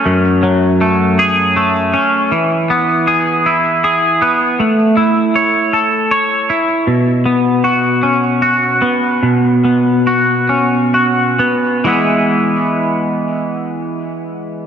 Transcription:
\new Staff \with { instrumentName = "Clean electric guitar" } { \time 6/8 \key e \major \tempo 4. = 53 <fis, a cis' gis'>8 fis8 a8 gis'8 a8 cis'8 | e8 b8 gis'8 e'8 gis'8 b8 | a8 e'8 cis''8 a'8 cis''8 e'8 | b,8 b8 fis'8 cis'8 fis'8 b8 |
b,8 b8 fis'8 cis'8 fis'8 b8 | <e gis b e'>2. | }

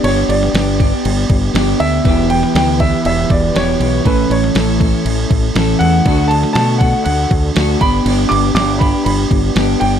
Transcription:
<<
  \new Staff \with { instrumentName = "Upright piano" } { \time 4/4 \key g \lydian \tempo 4 = 120 cis''8 d''2 r4 e''8~ | e''8 g''8 g''8 e''8 e''8 d''8 cis''4 | b'8 cis''2 r4 fis''8~ | fis''8 a''8 a''8 fis''8 fis''8 r4 b''8~ |
b''8 d'''8 d'''8 b''8 b''8 r4 g''8 | }
  \new Staff \with { instrumentName = "Clean electric guitar" } { \time 4/4 \key g \lydian <b d' g'>4 <b d' g'>8 <d' g'>4. <b d' g'>8 <d' g'>8 | <e b e' g'>4 <e b e' g'>8 <b e' g'>4. <e b e' g'>8 <b e' g'>8 | <e a cis' a'>4 <e a cis' a'>8 <a cis' a'>4. <e a cis' a'>8 <a cis' a'>8 | <a d' fis'>4 <a d' fis'>8 <d' fis'>4. <a d' fis'>8 <b d' g'>8 |
<b d' g'>4 <b d' g'>8 <d' g'>4. <b d' g'>8 <d' g'>8 | }
  \new Staff \with { instrumentName = "Tonewheel organ" } { \time 4/4 \key g \lydian <b d' g'>1 | <e e' g' b'>1 | <a cis'>1 | <d d' fis' a'>2.~ <d d' fis' a'>8 <b g'>8~ |
<b g'>1 | }
  \new Staff \with { instrumentName = "Fingered electric bass" } { \clef bass \time 4/4 \key g \lydian g,,8 g,,8 g,,4 g,,8 g,,8 g,,8 d,8 | e,,4 d,4 e,,8 e,,8 e,,8 b,,8 | a,,8 a,,8 a,,4 a,,8 a,,8 a,,8 e,8 | d,4 b,4 d,8 d,8 d,8 g,,8 |
g,,8 g,,8 g,,4 g,,8 g,,8 g,,8 g,,8 | }
  \new DrumStaff \with { instrumentName = "Drums" } \drummode { \time 4/4 cymc8 cymc16 sn16 <cymc sn>8 <cymc bd>8 cymc8 <cymc bd>8 <cymc sn>8 cymc8 | <cymc bd>8 cymc16 sn16 <cymc sn>8 <cymc bd>8 cymc8 <cymc bd>8 <cymc sn>8 cymc8 | <cymc bd>8 cymc16 sn16 <cymc sn>8 <cymc bd>8 cymc8 <cymc bd>8 <cymc sn>8 cymc8 | <cymc bd>8 cymc16 sn16 <cymc sn>8 <cymc bd>8 cymc8 <cymc bd>8 <cymc sn>8 <cymc bd>8 |
cymc8 cymc8 <cymc sn>8 <cymc bd>8 cymc8 <cymc bd>8 <cymc sn>8 cymc8 | }
>>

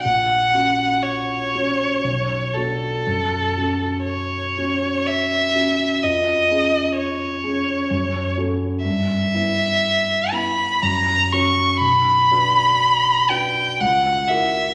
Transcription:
<<
  \new Staff \with { instrumentName = "Violin" } { \time 3/4 \key fis \phrygian \tempo 4 = 61 fis''4 cis''4. a'8~ | a'4 cis''4 e''4 | dis''4 cis''4. r8 | e''4. b''8 ais''8 cis'''8 |
b''4. g''8 fis''8 e''8 | }
  \new Staff \with { instrumentName = "Grand piano" } { \time 3/4 \key fis \phrygian ais,,8 <cis' fis'>4 <cis' fis'>8 b,,8 <b d' fis'>8 | fis,8 <cis' fis'>4 <cis' fis'>4 <cis' fis'>8 | eis,8 <cis' gis'>4 <cis' gis'>8 fis,8 <cis' fis' a'>8 | g,8 <b e' e''>4 <b e' e''>8 fis,8 <cis' fis' cis''>8 |
b,,8 <d' fis' b'>4 <d' fis' b'>8 cis,8 <e' fis' ais'>8 | }
>>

